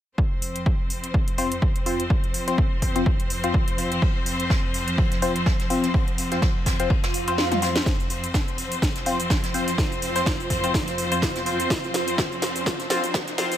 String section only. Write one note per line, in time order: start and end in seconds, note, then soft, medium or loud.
0.18 7.82 F2 medium
0.18 7.82 F3 medium
0.18 7.82 C4 medium
0.18 7.82 C5 medium
7.86 13.57 F2 medium
7.86 13.57 F3 medium
7.86 13.57 C4 medium
7.86 13.57 C5 medium